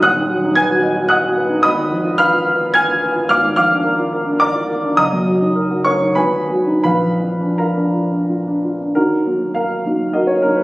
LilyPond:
\new Staff \with { instrumentName = "Upright piano" } { \time 3/4 \key b \lydian \tempo 4 = 105 << { <fis'' dis''' fis'''>4 <gis'' gis'''>4 <fis'' dis''' fis'''>8 r8 | \key ees \minor <ees'' ces''' ees'''>4 <f'' ces''' f'''>4 <aes'' f''' aes'''>4 | <f'' d''' f'''>8 <f'' d''' f'''>4. <d'' bes'' d'''>4 | <ees'' bes'' ees'''>4. <des'' des'''>8 <ces'' aes'' ces'''>4 |
<ces'' f'' ces'''>4 <bes' f'' bes''>4 r4 | <ees' ges' bes'>4 <bes' f''>4 <ges' bes' ees''>16 des''16 bes'16 ces''16 | } \\ { <dis,, dis,>16 dis16 fis16 dis'16 b'16 fis'16 dis''16 fis'16 dis''16 fis'16 b'16 dis'16 | aes,,16 ees,16 f16 f'16 ces''16 f'16 ces''16 f'16 ces''16 f'16 ces''16 f'16 | aes,,16 aes,16 f16 d'16 bes'16 f'16 bes'16 d'16 bes'16 f'16 bes'16 d'16 | ges,,16 ges,16 ges16 ees'16 bes'16 ges'16 bes'16 ees'16 aes,,16 ees,16 ges16 ees'16 |
bes,,16 f,16 f16 d'16 f'16 d'16 f'16 d'16 f'16 d'16 f'16 d'16 | ees,8 <ges bes ees'>4 <ges bes ees'>4 <ges bes ees'>8 | } >> }